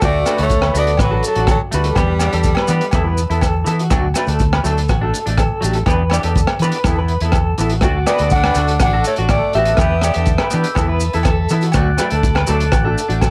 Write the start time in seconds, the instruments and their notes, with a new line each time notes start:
0.01 fingered electric bass D2, clean electric guitar A3 D4 F#4 D5, kick, cross-stick, closed hi-hat, low agogo, maracas
0.06 tenor saxophone A3
0.26 clean electric guitar A3 D4 B4, cross-stick, closed hi-hat, low agogo, maracas
0.30 clean electric guitar F#4
0.38 fingered electric bass D2, clean electric guitar D4 F#4 A4, closed hi-hat, maracas
0.42 tenor saxophone A3, clean electric guitar C#5
0.49 kick, closed hi-hat, maracas
0.62 clean electric guitar B4, cross-stick, low agogo
0.74 fingered electric bass D2, clean electric guitar A3 D4 F#4 A4, closed hi-hat, maracas
0.79 tenor saxophone B3, clean electric guitar D5
0.87 closed hi-hat, maracas
0.97 fingered electric bass A1, clean electric guitar F#4, kick, cross-stick, closed hi-hat, low agogo, maracas
1.02 tenor saxophone F#3, clean electric guitar B4
1.11 clean electric guitar D4 F#4 A4
1.23 tenor saxophone F#3, closed hi-hat, maracas
1.28 clean electric guitar A4
1.35 fingered electric bass A1, clean electric guitar D4 F#4, closed hi-hat
1.47 tenor saxophone F#3, muted clean electric guitar stroke, kick, cross-stick, closed hi-hat, low agogo, maracas
1.51 clean electric guitar A4
1.71 fingered electric bass D2, tenor saxophone G3, clean electric guitar A3 D4 F#4 B4, muted clean electric guitar stroke, closed hi-hat, maracas
1.84 clean electric guitar A4, closed hi-hat, maracas
1.95 fingered electric bass E2, clean electric guitar B3 D4 G4 B4, kick, cross-stick, closed hi-hat, low agogo, maracas
2.19 clean electric guitar B3 D4 G4 D5, cross-stick, closed hi-hat, low agogo, maracas
2.33 fingered electric bass E2, clean electric guitar D4 G4 A4, closed hi-hat, maracas
2.43 kick, closed hi-hat, maracas
2.55 clean electric guitar B4, cross-stick, low agogo
2.68 fingered electric bass E3, clean electric guitar B3 D4 G4 B4, closed hi-hat, maracas
2.81 closed hi-hat, maracas
2.91 fingered electric bass E2, clean electric guitar E3 B3 E4, kick, cross-stick, closed hi-hat, low agogo, maracas
2.96 clean electric guitar A4
3.04 clean electric guitar B3 E4 B4
3.18 closed hi-hat, maracas
3.30 fingered electric bass E2, clean electric guitar B3 E4 A4, closed hi-hat
3.41 clean electric guitar A4, kick, cross-stick, closed hi-hat, low agogo, maracas
3.64 clean electric guitar E3 B3 E4 A4, fingered electric bass E3, closed hi-hat, maracas
3.79 clean electric guitar F#4, closed hi-hat, maracas
3.90 fingered electric bass D2, clean electric guitar F#3 A3 D4 F#4, kick, cross-stick, closed hi-hat, low agogo, maracas
4.14 clean electric guitar A3 D4 B4, muted clean electric guitar stroke, cross-stick, closed hi-hat, low agogo, maracas
4.26 fingered electric bass D2, clean electric guitar A3 D4 A4, closed hi-hat, maracas
4.39 kick, closed hi-hat, maracas
4.53 clean electric guitar B4, cross-stick, low agogo
4.64 fingered electric bass D2, clean electric guitar F#3 A3 D4 A4, closed hi-hat, maracas
4.77 closed hi-hat, maracas
4.89 fingered electric bass A1, clean electric guitar F#4, kick, cross-stick, closed hi-hat, low agogo, maracas
5.01 clean electric guitar A3 D4 A4
5.14 closed hi-hat, maracas
5.26 fingered electric bass A1, clean electric guitar A3 D4, muted clean electric guitar stroke, closed hi-hat
5.38 clean electric guitar A4, kick, cross-stick, closed hi-hat, low agogo, maracas
5.61 fingered electric bass A1, clean electric guitar F#3 A3 D4 G4, closed hi-hat, maracas
5.73 clean electric guitar A4, closed hi-hat, maracas
5.86 fingered electric bass E2, clean electric guitar E3 B3 D4 G4 B4, kick, cross-stick, closed hi-hat, low agogo, maracas
6.10 clean electric guitar E3 B3 D4 D5, cross-stick, closed hi-hat, low agogo, maracas
6.14 clean electric guitar G4
6.23 fingered electric bass E2, clean electric guitar B3 D4 G4 A4, closed hi-hat, maracas
6.35 kick, closed hi-hat, maracas
6.47 cross-stick, low agogo
6.59 fingered electric bass E3, clean electric guitar E3 B3 B4, closed hi-hat, maracas
6.64 clean electric guitar D4 G4
6.72 closed hi-hat
6.84 fingered electric bass E2, clean electric guitar E3 B3 E4 A4, kick, cross-stick, closed hi-hat, low agogo, maracas
6.99 clean electric guitar B3 E4 B4
7.08 closed hi-hat
7.20 fingered electric bass E2, clean electric guitar E4 A4, closed hi-hat, maracas
7.25 clean electric guitar B3
7.32 clean electric guitar A4, kick, cross-stick, closed hi-hat, low agogo, maracas
7.58 fingered electric bass A1, clean electric guitar E3 B3 E4 A4, closed hi-hat, maracas
7.70 clean electric guitar F#4, closed hi-hat, maracas
7.81 fingered electric bass D2, clean electric guitar A3 D4 F#4, transistor combo organ F#5 A5 D6, kick, cross-stick, closed hi-hat, low agogo, maracas
7.85 clean electric guitar F#4
8.06 clean electric guitar A3 D4 F#4 B4 D5, tenor saxophone B3, cross-stick, closed hi-hat, low agogo, maracas
8.18 fingered electric bass D2, clean electric guitar D4 F#4, closed hi-hat, maracas
8.22 clean electric guitar A4
8.30 clean electric guitar F#5, kick, closed hi-hat, maracas
8.35 tenor saxophone D4
8.44 clean electric guitar B4, cross-stick, low agogo
8.55 fingered electric bass D2, clean electric guitar A3 D4 F#4 A4, closed hi-hat, maracas
8.67 closed hi-hat, maracas
8.80 fingered electric bass A1, clean electric guitar F#4 F#5, kick, cross-stick, closed hi-hat, low agogo, maracas
8.84 tenor saxophone D4
8.93 clean electric guitar D4 F#4 A4
9.04 tenor saxophone A3, clean electric guitar C#5, closed hi-hat, maracas
9.16 fingered electric bass A1, clean electric guitar F#4, closed hi-hat
9.20 clean electric guitar D4
9.29 clean electric guitar A4 D5, kick, cross-stick, closed hi-hat, low agogo, maracas
9.33 tenor saxophone A3
9.53 fingered electric bass A1, clean electric guitar A3 D4 G4 E5, closed hi-hat
9.58 tenor saxophone B3, clean electric guitar F#4
9.65 clean electric guitar A4, closed hi-hat, maracas
9.77 fingered electric bass E2, clean electric guitar B3 D4, transistor combo organ E5, kick, cross-stick, closed hi-hat, low agogo, maracas
9.81 clean electric guitar G4 B4, transistor combo organ G5
10.02 clean electric guitar B3 G4 D5, cross-stick, closed hi-hat, low agogo, maracas
10.14 fingered electric bass E2, clean electric guitar G4 A4, closed hi-hat, maracas
10.18 clean electric guitar D4
10.25 kick, closed hi-hat, maracas
10.38 clean electric guitar B4, cross-stick, low agogo
10.50 fingered electric bass E3, clean electric guitar B3 D4 G4 B4, closed hi-hat, maracas
10.64 closed hi-hat, maracas
10.75 fingered electric bass E2, clean electric guitar E3 B3 E4 A4, transistor combo organ B5, kick, cross-stick, closed hi-hat, low agogo, maracas
10.79 transistor combo organ A5
10.88 clean electric guitar B3 E4 B4
11.00 closed hi-hat, maracas
11.13 fingered electric bass E2, clean electric guitar B3 E4 A4, closed hi-hat
11.23 clean electric guitar A4, kick, cross-stick, closed hi-hat, low agogo, maracas
11.49 fingered electric bass E3, clean electric guitar B3 E4 A4, muted clean electric guitar stroke, closed hi-hat, maracas
11.61 clean electric guitar F#4, closed hi-hat, maracas
11.72 fingered electric bass D2, clean electric guitar F#3 A3 D4 F#4, transistor combo organ F#5 D6, kick, cross-stick, closed hi-hat, low agogo, maracas
11.97 clean electric guitar F#3 A3 D4 B4, cross-stick, closed hi-hat, low agogo, maracas
12.10 fingered electric bass D2, clean electric guitar A3 D4 A4, closed hi-hat, maracas
12.23 kick, closed hi-hat, maracas
12.35 clean electric guitar B4, cross-stick, low agogo
12.47 fingered electric bass D2, clean electric guitar F#3 A3 D4 A4, closed hi-hat, maracas
12.60 closed hi-hat, maracas
12.72 fingered electric bass A1, clean electric guitar F#4, kick, cross-stick, closed hi-hat, low agogo, maracas
12.85 clean electric guitar A3 D4 A4
12.98 closed hi-hat, maracas
13.08 fingered electric bass A1, clean electric guitar A3 D4 F#4, closed hi-hat
13.21 clean electric guitar A4, kick, cross-stick, closed hi-hat, low agogo, maracas